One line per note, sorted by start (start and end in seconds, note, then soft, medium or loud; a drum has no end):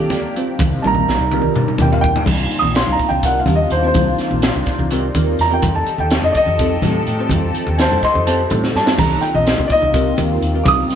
0.00 0.57 D#3 medium
0.00 0.18 G3 medium
0.00 0.32 A#3 medium
0.00 2.23 A#3 medium
0.00 0.18 C4 medium
0.00 0.56 D4 medium
0.00 0.19 F4 medium
0.00 0.34 G4 loud
0.00 0.57 G4 medium
0.00 0.19 A4 medium
0.10 snare soft
0.10 closed hi-hat medium
0.10 high conga medium
0.10 low conga medium
0.36 0.60 G3 medium
0.36 0.60 C4 medium
0.36 0.60 F4 medium
0.36 0.61 C5 medium
0.36 closed hi-hat medium
0.48 low conga soft
0.59 0.70 C2 medium
0.59 2.26 C3 medium
0.59 2.26 G3 medium
0.59 2.26 D#4 medium
0.59 kick loud
0.59 closed hi-hat medium
0.59 high conga medium
0.59 low conga medium
0.72 0.85 C3 medium
0.82 1.04 A#1 medium
0.82 1.13 G3 medium
0.82 1.13 C4 medium
0.82 1.14 F4 medium
0.82 1.14 A#4 medium
0.82 0.85 A5 medium
0.82 high tom medium
0.87 1.78 A#5 medium
0.95 low conga medium
1.08 1.18 A#1 medium
1.08 snare medium
1.18 1.49 C2 medium
1.18 high conga medium
1.18 low conga soft
1.32 1.62 G3 medium
1.32 1.62 C4 medium
1.32 1.62 F4 medium
1.32 1.62 A#4 medium
1.32 mid tom medium
1.42 low conga medium
1.54 1.65 G2 medium
1.54 mid tom medium
1.54 low conga soft
1.66 mid tom medium
1.66 low conga soft
1.78 2.19 D#2 medium
1.78 2.09 G3 medium
1.78 2.10 C4 medium
1.78 2.10 F4 medium
1.78 1.92 G5 medium
1.78 mid tom medium
1.78 high conga medium
1.78 low conga medium
1.82 2.11 A#4 medium
1.92 2.03 F5 medium
1.92 floor tom medium
2.01 2.25 G5 medium
2.01 kick medium
2.16 floor tom medium
2.26 2.47 C2 loud
2.26 5.59 C3 medium
2.26 5.59 A#3 medium
2.26 5.59 D4 medium
2.26 10.95 D#4 medium
2.26 5.59 F4 medium
2.26 kick medium
2.26 crash medium
2.26 high conga medium
2.26 low conga medium
2.51 muted fretless electric bass stroke soft
2.51 closed hi-hat medium
2.59 2.75 D#6 medium
2.59 low conga medium
2.64 2.83 A#1 medium
2.75 2.91 C6 medium
2.75 snare loud
2.75 closed hi-hat medium
2.87 2.98 C2 medium
2.87 high conga medium
2.92 3.07 A#5 medium
2.99 kick medium
2.99 closed hi-hat medium
3.09 3.41 C2 medium
3.09 3.23 G5 medium
3.09 low conga medium
3.23 3.38 G3 medium
3.23 3.39 C4 medium
3.23 3.39 F4 medium
3.23 3.39 A#4 medium
3.23 3.40 F#5 medium
3.23 kick medium
3.23 closed hi-hat medium
3.39 3.55 F5 medium
3.46 3.67 D#2 medium
3.46 3.69 G3 medium
3.46 3.70 C4 medium
3.46 3.69 F4 medium
3.46 3.70 G4 medium
3.46 closed hi-hat medium
3.46 high conga medium
3.46 low conga medium
3.55 3.71 D#5 medium
3.70 3.91 D#2 medium
3.70 3.85 C5 medium
3.70 closed hi-hat medium
3.83 4.42 G3 medium
3.83 4.42 C4 medium
3.83 4.43 F4 medium
3.83 4.43 C5 medium
3.87 4.80 C5 medium
3.94 4.15 C2 loud
3.94 kick loud
3.94 closed hi-hat medium
3.94 high conga medium
3.94 low conga medium
4.18 snare soft
4.18 closed hi-hat medium
4.30 4.51 A#1 medium
4.30 low conga medium
4.42 snare loud
4.42 closed hi-hat medium
4.55 4.65 C2 medium
4.55 high conga medium
4.66 kick medium
4.66 snare soft
4.66 closed hi-hat medium
4.79 5.09 C2 medium
4.79 low conga medium
4.91 5.06 G3 medium
4.91 5.06 C4 medium
4.91 5.06 F4 medium
4.91 5.07 A#4 medium
4.91 closed hi-hat medium
5.14 5.35 D#2 medium
5.14 5.37 G3 medium
5.14 5.37 C4 medium
5.14 5.37 F4 medium
5.14 5.38 A#4 medium
5.14 closed hi-hat medium
5.14 high conga medium
5.14 low conga medium
5.39 5.59 E2 medium
5.39 5.51 A#5 medium
5.39 snare soft
5.39 closed hi-hat medium
5.50 5.62 G3 medium
5.50 5.62 C4 medium
5.50 5.63 F4 medium
5.50 5.63 A#4 medium
5.50 5.75 G5 medium
5.62 5.83 F2 loud
5.62 8.96 F3 medium
5.62 8.96 G4 medium
5.62 8.96 A4 medium
5.62 kick loud
5.62 closed hi-hat medium
5.62 high conga medium
5.62 low conga medium
5.75 5.98 A5 medium
5.87 muted fretless electric bass stroke soft
5.87 closed hi-hat medium
5.98 6.19 D#2 medium
5.98 6.23 G5 medium
5.98 low conga medium
6.11 snare loud
6.11 closed hi-hat medium
6.22 6.33 F2 medium
6.22 6.34 D#5 medium
6.22 high conga medium
6.32 6.35 D5 medium
6.32 muted fretless electric bass stroke soft
6.32 kick medium
6.32 closed hi-hat medium
6.37 7.29 D#5 loud
6.46 6.77 F2 medium
6.46 low conga medium
6.59 6.74 G3 medium
6.59 6.74 C4 medium
6.59 6.74 F4 medium
6.59 6.74 A4 medium
6.59 kick loud
6.59 closed hi-hat medium
6.82 7.03 A2 medium
6.82 7.05 G3 medium
6.82 7.05 C4 medium
6.82 7.06 F4 medium
6.82 7.06 A4 medium
6.82 snare soft
6.82 closed hi-hat medium
6.82 high conga medium
6.82 low conga medium
7.07 7.27 A2 medium
7.07 closed hi-hat medium
7.17 7.77 G3 medium
7.17 7.78 C4 medium
7.17 7.78 F4 medium
7.17 7.79 C5 medium
7.29 7.51 F2 loud
7.29 kick loud
7.29 closed hi-hat medium
7.29 high conga medium
7.29 low conga medium
7.55 muted fretless electric bass stroke soft
7.55 closed hi-hat medium
7.67 7.87 D#2 medium
7.67 low conga medium
7.77 8.02 C5 medium
7.77 7.80 G#5 medium
7.77 snare loud
7.77 closed hi-hat medium
7.77 low conga soft
7.82 8.03 A5 loud
7.91 8.01 F2 medium
7.91 high conga medium
8.03 8.25 D#5 medium
8.03 8.27 C6 medium
8.03 muted fretless electric bass stroke soft
8.03 kick medium
8.03 snare soft
8.03 closed hi-hat medium
8.15 8.45 F2 medium
8.15 low conga medium
8.26 8.41 G3 medium
8.26 8.42 C4 medium
8.26 8.42 F4 medium
8.26 8.42 A4 medium
8.26 8.49 C5 medium
8.26 8.50 A5 medium
8.26 snare soft
8.26 closed hi-hat medium
8.40 low conga soft
8.50 8.71 A2 medium
8.50 8.72 G3 medium
8.50 8.73 C4 medium
8.50 8.73 F4 soft
8.50 8.73 C5 medium
8.50 closed hi-hat medium
8.50 high conga medium
8.50 low conga medium
8.63 snare medium
8.63 low conga soft
8.75 8.95 G2 medium
8.75 8.98 A5 medium
8.75 snare medium
8.75 low conga soft
8.86 8.98 G3 medium
8.86 8.98 C4 medium
8.86 8.99 F4 medium
8.86 8.99 A4 medium
8.86 snare loud
8.86 low conga soft
8.97 9.18 C2 loud
8.97 10.95 C3 medium
8.97 10.95 A#3 medium
8.97 10.95 C4 medium
8.97 10.95 F4 medium
8.97 9.22 A#5 medium
8.97 kick loud
8.97 closed hi-hat medium
8.97 splash medium
8.97 high conga medium
8.97 low conga medium
9.21 9.33 G5 medium
9.21 closed hi-hat medium
9.35 9.54 A#1 medium
9.35 9.69 D#5 medium
9.35 low conga medium
9.47 snare loud
9.47 closed hi-hat medium
9.58 9.68 C2 medium
9.58 high conga medium
9.67 9.70 D5 medium
9.67 muted fretless electric bass stroke soft
9.67 kick medium
9.67 closed hi-hat soft
9.72 10.17 D#5 loud
9.82 10.12 C2 medium
9.82 low conga medium
9.94 10.09 G3 medium
9.94 10.08 C4 medium
9.94 10.09 F4 medium
9.94 10.09 A#4 loud
9.94 kick loud
9.94 closed hi-hat medium
10.17 10.37 D#2 medium
10.17 10.40 G3 medium
10.17 10.40 C4 medium
10.17 10.40 F4 medium
10.17 10.41 A#4 medium
10.17 closed hi-hat medium
10.17 high conga loud
10.17 low conga medium
10.42 10.61 D#2 medium
10.42 closed hi-hat medium
10.53 10.95 G3 medium
10.53 10.95 C4 medium
10.53 10.95 F4 medium
10.53 10.95 A#4 medium
10.64 10.86 C2 loud
10.64 10.66 D6 medium
10.64 kick loud
10.64 closed hi-hat medium
10.64 high conga medium
10.64 low conga medium
10.68 10.95 D#6 loud
10.89 muted fretless electric bass stroke soft
10.89 snare soft
10.89 closed hi-hat medium